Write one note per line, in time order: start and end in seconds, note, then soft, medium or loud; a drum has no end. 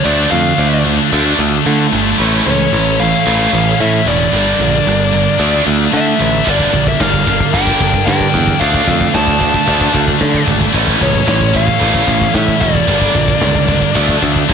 0.04 0.25 D2 medium
0.04 0.30 D3 medium
0.04 0.11 A3 medium
0.04 0.30 A3 loud
0.04 4.30 A3 medium
0.04 0.12 D4 medium
0.04 0.31 D4 loud
0.04 0.30 D5 loud
0.08 2.19 D3 medium
0.08 0.19 A3 medium
0.08 2.19 F4 medium
0.13 0.19 D4 medium
0.19 0.27 A3 medium
0.19 0.26 D4 medium
0.27 0.35 A3 medium
0.27 0.34 D4 medium
0.31 0.52 F2 medium
0.31 0.56 D3 medium
0.31 0.57 A3 medium
0.31 0.81 F5 loud
0.35 0.42 A3 medium
0.35 0.43 D4 medium
0.43 0.50 A3 medium
0.43 0.50 D4 medium
0.50 0.57 A3 medium
0.50 0.58 D4 medium
0.58 0.98 D2 medium
0.58 0.83 D3 medium
0.58 0.65 A3 medium
0.58 0.83 A3 medium
0.58 0.67 D4 medium
0.66 0.73 A3 medium
0.66 0.73 D4 medium
0.74 0.81 A3 medium
0.74 0.80 D4 medium
0.80 0.88 A3 medium
0.80 0.88 D4 medium
0.85 1.09 D3 medium
0.85 1.10 A3 medium
0.85 0.95 A3 medium
0.89 0.96 D4 medium
0.96 1.03 A3 medium
0.96 1.04 D4 medium
1.04 1.11 A3 medium
1.04 1.12 D4 medium
1.12 1.33 D2 loud
1.12 1.38 D3 loud
1.12 1.19 A3 medium
1.12 1.37 A3 loud
1.12 1.18 D4 medium
1.12 1.38 D4 loud
1.19 1.26 A3 medium
1.19 1.26 D4 medium
1.26 1.34 A3 medium
1.26 1.35 D4 medium
1.35 1.59 D2 loud
1.35 1.63 D3 medium
1.35 1.42 A3 medium
1.35 1.63 A3 medium
1.35 1.42 D4 medium
1.42 1.49 A3 medium
1.42 1.50 D4 medium
1.49 1.57 A3 medium
1.49 1.57 D4 medium
1.58 1.65 A3 medium
1.58 1.65 D4 medium
1.65 1.90 D3 medium
1.65 1.86 D3 loud
1.65 1.72 A3 medium
1.65 1.90 A3 loud
1.65 1.73 D4 medium
1.73 1.80 A3 medium
1.73 1.80 D4 medium
1.80 1.87 A3 medium
1.80 1.87 D4 medium
1.87 1.95 A3 medium
1.87 1.95 D4 medium
1.92 2.13 G1 medium
1.92 2.17 D3 medium
1.92 2.17 A3 medium
1.92 2.03 A3 medium
1.96 2.02 D4 medium
2.02 2.11 A3 medium
2.02 2.10 D4 medium
2.11 2.17 A3 medium
2.11 2.18 D4 medium
2.18 2.40 A1 medium
2.18 2.44 A2 loud
2.18 2.44 E3 loud
2.18 2.44 A3 loud
2.18 2.25 C#4 medium
2.18 2.26 E4 medium
2.18 4.30 A4 medium
2.18 4.31 C#5 medium
2.25 2.33 C#4 medium
2.25 2.34 E4 medium
2.34 2.39 C#4 medium
2.34 2.42 E4 medium
2.40 2.47 C#4 medium
2.40 2.48 E4 medium
2.45 2.66 C#2 loud
2.45 2.70 A2 medium
2.45 2.70 E3 medium
2.45 2.56 C#4 medium
2.45 2.56 E4 medium
2.45 3.01 C#5 loud
2.56 2.63 C#4 medium
2.56 2.64 E4 medium
2.64 2.71 C#4 medium
2.64 2.72 E4 medium
2.71 3.13 A1 loud
2.71 2.97 A2 medium
2.71 2.97 E3 medium
2.71 2.78 C#4 medium
2.71 2.78 E4 medium
2.78 2.86 C#4 medium
2.78 2.86 E4 medium
2.87 2.94 C#4 medium
2.87 2.95 E4 medium
2.94 3.02 C#4 medium
2.94 3.03 E4 medium
3.00 3.24 A2 medium
3.00 3.24 E3 medium
3.00 3.10 C#4 medium
3.00 3.09 E4 medium
3.00 3.81 F5 loud
3.10 3.17 C#4 medium
3.10 3.17 E4 medium
3.17 3.24 C#4 medium
3.17 3.26 E4 medium
3.24 3.46 A1 loud
3.24 3.51 A2 loud
3.24 3.51 E3 loud
3.24 3.51 A3 loud
3.24 3.31 C#4 medium
3.24 3.32 E4 loud
3.31 3.39 C#4 medium
3.31 3.40 E4 medium
3.39 3.47 C#4 medium
3.39 3.48 E4 medium
3.48 3.55 C#4 medium
3.48 3.56 E4 medium
3.53 3.73 A1 loud
3.53 3.77 A2 medium
3.53 3.77 E3 loud
3.53 3.62 C#4 medium
3.53 3.63 E4 medium
3.63 3.71 C#4 medium
3.63 3.71 E4 medium
3.72 3.79 C#4 medium
3.72 3.79 E4 medium
3.79 4.04 A2 medium
3.79 4.00 A2 medium
3.79 4.04 E3 medium
3.79 3.86 C#4 medium
3.79 3.86 E4 medium
3.79 4.08 E5 loud
3.87 3.94 C#4 medium
3.87 3.93 E4 medium
3.94 4.02 C#4 medium
3.94 4.01 E4 medium
4.03 4.26 E1 loud
4.03 4.09 C#4 medium
4.03 4.10 E4 medium
4.07 4.31 A2 medium
4.07 4.31 E3 medium
4.07 4.16 C#4 medium
4.07 4.17 E4 medium
4.07 5.64 D5 medium
4.17 4.24 C#4 medium
4.17 4.24 E4 medium
4.25 4.31 C#4 medium
4.25 4.31 E4 medium
4.31 4.53 G1 loud
4.31 4.58 G2 medium
4.31 4.58 D3 loud
4.31 4.58 G3 loud
4.31 5.39 G3 medium
4.31 4.38 A#3 medium
4.31 4.39 D4 medium
4.31 5.39 D4 medium
4.31 5.39 A4 medium
4.31 5.39 A#4 medium
4.39 4.46 A#3 medium
4.39 4.47 D4 medium
4.48 4.54 A#3 medium
4.48 4.54 D4 medium
4.54 4.62 A#3 medium
4.54 4.61 D4 medium
4.60 4.80 A#1 medium
4.60 4.84 G2 medium
4.60 4.85 D3 medium
4.60 4.69 A#3 medium
4.60 4.69 D4 medium
4.70 4.76 A#3 medium
4.70 4.78 D4 medium
4.76 4.84 A#3 medium
4.76 4.85 D4 medium
4.85 5.27 G1 medium
4.85 5.11 G2 medium
4.85 5.11 D3 medium
4.85 4.92 A#3 medium
4.85 4.93 D4 medium
4.93 5.00 A#3 medium
4.93 5.00 D4 medium
5.00 5.08 A#3 medium
5.00 5.08 D4 medium
5.08 5.15 A#3 medium
5.08 5.15 D4 medium
5.13 5.37 G2 medium
5.13 5.37 D3 medium
5.13 5.23 A#3 medium
5.13 5.23 D4 medium
5.23 5.31 A#3 medium
5.23 5.30 D4 medium
5.31 5.39 A#3 medium
5.31 5.39 D4 medium
5.39 5.60 D2 loud
5.39 5.63 D3 loud
5.39 6.47 D3 medium
5.39 5.64 A3 loud
5.39 5.48 A3 medium
5.39 6.46 A3 medium
5.39 5.65 D4 loud
5.39 5.48 D4 loud
5.39 6.46 E4 medium
5.39 6.47 F4 medium
5.49 5.54 A3 medium
5.49 5.56 D4 medium
5.55 5.62 A3 medium
5.55 5.62 D4 medium
5.63 5.87 D2 medium
5.63 5.90 D3 medium
5.63 5.69 A3 medium
5.63 5.90 A3 medium
5.63 5.70 D4 medium
5.70 5.78 A3 medium
5.70 5.77 D4 medium
5.77 5.86 A3 medium
5.77 5.85 D4 medium
5.85 5.93 A3 medium
5.85 5.93 D4 medium
5.92 6.17 D3 medium
5.92 6.13 D3 medium
5.92 6.17 A3 medium
5.92 6.01 A3 medium
5.92 5.99 D4 medium
5.97 6.07 D4 medium
5.97 6.50 E5 medium
6.02 6.08 A3 medium
6.08 6.16 A3 medium
6.08 6.15 D4 medium
6.16 6.43 D3 medium
6.16 6.24 A3 medium
6.16 6.23 D4 medium
6.20 6.40 A1 medium
6.20 6.44 A3 medium
6.20 6.31 A3 medium
6.20 6.30 D4 medium
6.31 6.39 A3 medium
6.31 6.38 D4 medium
6.38 6.46 A3 medium
6.38 6.46 D4 medium
6.44 6.67 G1 medium
6.44 6.71 G2 loud
6.44 6.71 D3 medium
6.44 6.71 G3 loud
6.44 8.59 G3 medium
6.44 6.53 A#3 medium
6.44 6.54 D4 medium
6.44 10.71 D4 medium
6.44 10.71 A4 medium
6.44 8.58 A#4 medium
6.44 kick medium
6.44 china medium
6.44 crash loud
6.50 6.61 A#3 medium
6.50 6.88 D5 medium
6.54 6.62 D4 medium
6.60 6.69 A#3 medium
6.60 6.69 D4 medium
6.60 kick medium
6.69 6.97 G2 medium
6.69 6.97 D3 medium
6.69 6.75 A#3 medium
6.69 6.77 D4 medium
6.74 6.94 A#1 medium
6.74 6.83 A#3 medium
6.74 6.85 D4 medium
6.74 kick medium
6.85 6.91 A#3 medium
6.85 6.92 D4 medium
6.85 7.01 E5 medium
6.85 kick medium
6.91 6.99 A#3 medium
6.91 7.00 D4 medium
7.00 7.40 G1 medium
7.00 7.24 G2 medium
7.00 7.24 D3 medium
7.00 7.07 A#3 medium
7.00 7.07 D4 medium
7.00 7.56 F5 medium
7.00 kick medium
7.00 snare loud
7.00 china medium
7.07 7.14 A#3 medium
7.07 7.15 D4 medium
7.14 7.22 A#3 medium
7.14 7.23 D4 medium
7.14 kick medium
7.23 7.30 A#3 medium
7.23 7.30 D4 medium
7.27 7.51 G2 medium
7.27 7.51 D3 medium
7.27 7.38 A#3 medium
7.27 7.38 D4 medium
7.27 kick medium
7.38 7.45 A#3 medium
7.38 7.45 D4 medium
7.38 kick medium
7.46 7.53 A#3 medium
7.46 7.53 D4 medium
7.53 7.74 G1 medium
7.53 7.79 G2 loud
7.53 7.79 D3 loud
7.53 7.79 G3 loud
7.53 7.60 A#3 medium
7.53 7.61 D4 medium
7.53 8.05 G5 loud
7.53 kick medium
7.53 china medium
7.61 7.68 A#3 medium
7.61 7.68 D4 medium
7.67 7.76 A#3 medium
7.67 7.76 D4 medium
7.67 kick medium
7.76 7.83 A#3 medium
7.76 7.83 D4 medium
7.80 8.00 G1 loud
7.80 8.05 G2 medium
7.80 8.05 D3 medium
7.80 7.92 A#3 medium
7.80 7.91 D4 medium
7.80 kick medium
7.92 8.00 A#3 medium
7.92 7.99 D4 medium
7.92 kick medium
7.99 8.07 A#3 medium
7.99 8.07 D4 medium
8.06 8.27 G2 medium
8.06 8.31 G2 medium
8.06 8.31 D3 loud
8.06 8.15 A#3 medium
8.06 8.14 D4 medium
8.06 8.62 G5 loud
8.06 kick medium
8.06 snare loud
8.06 china medium
8.15 8.22 A#3 medium
8.15 8.22 D4 medium
8.21 8.29 A#3 medium
8.21 8.30 D4 medium
8.21 kick medium
8.29 8.37 A#3 medium
8.29 8.38 D4 medium
8.34 8.54 E2 medium
8.34 8.58 G2 medium
8.34 8.58 D3 medium
8.34 8.44 A#3 medium
8.34 kick medium
8.38 8.45 D4 medium
8.44 8.52 A#3 medium
8.44 8.53 D4 medium
8.44 kick medium
8.53 8.60 A#3 medium
8.53 8.61 D4 medium
8.60 8.81 D2 medium
8.60 8.86 D3 medium
8.60 8.68 A3 medium
8.60 8.86 A3 loud
8.60 8.68 D4 medium
8.60 8.87 D4 loud
8.60 10.73 D5 medium
8.60 9.15 F5 loud
8.60 10.73 F5 medium
8.60 kick medium
8.60 china medium
8.68 8.76 A3 medium
8.68 8.76 D4 medium
8.74 8.83 A3 medium
8.74 8.84 D4 medium
8.74 kick medium
8.84 9.07 F2 medium
8.84 9.11 D3 medium
8.84 8.91 A3 medium
8.84 8.91 D4 medium
8.88 9.12 A3 medium
8.88 8.98 A3 medium
8.88 8.99 D4 medium
8.88 kick medium
8.98 9.06 A3 medium
8.98 9.06 D4 medium
8.98 kick medium
9.07 9.14 A3 medium
9.07 9.14 D4 medium
9.13 9.54 D2 medium
9.13 9.38 D3 medium
9.13 9.38 A3 medium
9.13 9.22 A3 medium
9.13 9.22 D4 medium
9.13 10.44 A5 medium
9.13 kick medium
9.13 snare loud
9.13 china medium
9.23 9.30 A3 medium
9.23 9.30 D4 medium
9.28 9.36 A3 medium
9.28 9.38 D4 medium
9.28 kick medium
9.37 9.65 D3 medium
9.37 9.44 A3 medium
9.37 9.64 A3 medium
9.37 9.45 D4 medium
9.41 kick medium
9.45 9.52 A3 medium
9.45 9.52 D4 medium
9.52 9.60 A3 medium
9.52 9.60 D4 medium
9.52 kick medium
9.61 9.67 A3 medium
9.61 9.68 D4 medium
9.66 9.88 D2 loud
9.66 9.92 D3 loud
9.66 9.75 A3 medium
9.66 9.92 A3 loud
9.66 9.93 D4 loud
9.66 9.75 D4 medium
9.66 kick medium
9.66 china medium
9.75 9.82 A3 medium
9.75 9.82 D4 medium
9.81 9.90 A3 medium
9.81 9.89 D4 medium
9.81 kick medium
9.90 10.18 D3 medium
9.90 9.97 A3 medium
9.90 10.18 A3 medium
9.90 9.97 D4 medium
9.94 10.14 D2 loud
9.94 10.05 A3 medium
9.94 10.05 D4 medium
9.94 kick medium
10.06 10.13 A3 medium
10.06 10.12 D4 medium
10.06 kick medium
10.13 10.21 A3 medium
10.13 10.20 D4 medium
10.20 10.45 D3 medium
10.20 10.41 D3 loud
10.20 10.44 A3 medium
10.20 10.28 A3 medium
10.20 10.29 D4 medium
10.20 kick medium
10.20 snare loud
10.20 china medium
10.29 10.35 A3 medium
10.29 10.35 D4 medium
10.34 10.43 A3 medium
10.34 10.43 D4 medium
10.34 kick medium
10.43 10.67 G#1 medium
10.43 10.71 D3 medium
10.43 10.51 A3 medium
10.43 10.71 A3 medium
10.43 10.51 D4 medium
10.48 10.59 D4 medium
10.48 kick medium
10.52 10.59 A3 medium
10.59 10.67 A3 medium
10.59 10.67 D4 medium
10.59 kick medium
10.67 10.73 A3 medium
10.67 10.74 D4 medium
10.73 10.94 A1 loud
10.73 10.98 A2 medium
10.73 10.98 E3 medium
10.73 12.86 E3 medium
10.73 10.99 A3 loud
10.73 12.86 A3 medium
10.73 10.81 C#4 medium
10.73 10.81 E4 medium
10.73 14.45 A4 medium
10.73 12.86 C#5 medium
10.73 kick medium
10.73 china medium
10.73 crash loud
10.81 10.90 C#4 medium
10.81 10.88 E4 medium
10.88 10.95 C#4 medium
10.88 10.96 E4 medium
10.88 kick medium
10.96 11.24 A2 medium
10.96 11.24 E3 medium
10.96 11.03 C#4 medium
10.96 11.03 E4 medium
11.01 11.21 C#2 medium
11.01 11.11 C#4 medium
11.01 11.11 E4 medium
11.01 11.57 C#5 loud
11.01 kick medium
11.11 11.18 C#4 medium
11.11 11.19 E4 medium
11.11 kick medium
11.18 11.26 C#4 medium
11.18 11.27 E4 medium
11.26 11.67 A1 medium
11.26 11.51 A2 medium
11.26 11.52 E3 medium
11.26 11.34 C#4 medium
11.26 11.35 E4 medium
11.26 kick medium
11.26 snare loud
11.26 china medium
11.35 11.42 C#4 medium
11.35 11.42 E4 medium
11.41 11.49 C#4 medium
11.41 11.50 E4 medium
11.41 kick medium
11.49 11.56 C#4 medium
11.49 11.58 E4 medium
11.54 11.78 A2 medium
11.54 11.79 E3 medium
11.54 11.64 C#4 medium
11.54 12.34 F5 loud
11.54 kick medium
11.58 11.65 E4 medium
11.65 11.72 C#4 medium
11.65 11.73 E4 medium
11.65 kick medium
11.72 11.80 C#4 medium
11.72 11.81 E4 medium
11.79 12.01 A1 medium
11.79 12.05 A2 loud
11.79 12.06 E3 loud
11.79 12.06 A3 loud
11.79 11.87 C#4 medium
11.79 11.89 E4 medium
11.79 kick medium
11.79 china medium
11.88 11.95 C#4 medium
11.88 11.97 E4 medium
11.95 12.03 C#4 medium
11.95 12.03 E4 medium
11.95 kick medium
12.03 12.31 A2 medium
12.03 12.32 E3 medium
12.03 12.11 C#4 medium
12.03 12.11 E4 medium
12.08 12.28 A1 medium
12.08 kick medium
12.12 12.18 C#4 medium
12.12 12.19 E4 medium
12.19 12.26 C#4 medium
12.19 12.27 E4 medium
12.19 kick medium
12.26 12.34 C#4 medium
12.26 12.35 E4 medium
12.34 12.58 A2 medium
12.34 12.54 A2 loud
12.34 12.59 E3 medium
12.34 12.41 C#4 medium
12.34 12.43 E4 medium
12.34 12.61 E5 loud
12.34 kick medium
12.34 snare loud
12.34 china medium
12.41 12.49 C#4 medium
12.41 12.49 E4 medium
12.48 12.57 C#4 medium
12.48 12.57 E4 medium
12.48 kick medium
12.57 12.85 A2 medium
12.57 12.64 C#4 medium
12.57 12.65 E4 medium
12.61 12.81 E1 medium
12.61 12.86 E3 medium
12.61 12.71 C#4 medium
12.61 12.72 E4 medium
12.61 14.18 D5 medium
12.61 kick medium
12.71 12.79 C#4 medium
12.71 12.80 E4 medium
12.71 kick medium
12.80 12.87 C#4 medium
12.80 12.87 E4 medium
12.87 13.08 G1 medium
12.87 13.13 G2 loud
12.87 13.13 D3 loud
12.87 13.13 G3 loud
12.87 13.95 G3 medium
12.87 12.94 A#3 medium
12.87 12.95 D4 medium
12.87 14.48 D4 medium
12.87 13.95 A#4 medium
12.87 kick medium
12.87 china medium
12.95 13.02 A#3 medium
12.95 13.02 D4 medium
13.02 13.09 A#3 medium
13.02 13.10 D4 medium
13.02 kick medium
13.10 13.17 A#3 medium
13.10 13.18 D4 medium
13.14 13.35 A#1 medium
13.14 13.39 G2 medium
13.14 13.39 D3 medium
13.14 kick medium
13.19 13.25 A#3 medium
13.19 13.25 D4 medium
13.25 13.33 A#3 medium
13.25 13.33 D4 medium
13.25 kick medium
13.33 13.40 A#3 medium
13.33 13.42 D4 medium
13.40 13.81 C#2 medium
13.40 13.66 G2 medium
13.40 13.66 D3 medium
13.40 13.47 A#3 medium
13.40 13.49 D4 medium
13.40 kick medium
13.40 snare loud
13.40 china medium
13.48 13.55 A#3 medium
13.48 13.57 D4 medium
13.55 13.63 A#3 medium
13.55 13.65 D4 medium
13.55 kick medium
13.64 13.92 G2 medium
13.64 13.71 A#3 medium
13.64 13.71 D4 medium
13.68 13.92 D3 medium
13.68 13.79 D4 medium
13.68 kick medium
13.72 13.79 A#3 medium
13.79 13.87 A#3 medium
13.79 13.86 D4 medium
13.79 kick medium
13.87 13.95 A#3 medium
13.87 13.94 D4 medium
13.94 14.15 D2 medium
13.94 14.20 D3 loud
13.94 14.20 A3 loud
13.94 14.03 A3 medium
13.94 14.21 D4 loud
13.94 14.03 D4 loud
13.94 14.50 E5 medium
13.94 14.50 F5 medium
13.94 kick medium
13.94 china medium
14.03 14.10 A3 medium
14.03 14.10 D4 medium
14.09 14.18 A3 medium
14.09 14.17 D4 medium
14.09 kick medium
14.18 14.25 A3 medium
14.18 14.25 D4 medium
14.22 14.42 D2 loud
14.22 14.46 D3 medium
14.22 14.47 A3 medium
14.22 14.32 A3 medium
14.22 14.33 D4 medium
14.22 kick medium
14.32 14.40 A3 medium
14.32 14.39 D4 medium
14.32 kick medium
14.40 14.49 A3 medium
14.40 14.47 D4 medium
14.48 14.54 A#1 medium
14.48 14.54 A#2 medium
14.48 14.54 F3 medium
14.48 14.54 A#3 medium
14.48 14.54 D4 medium
14.48 kick medium
14.48 snare medium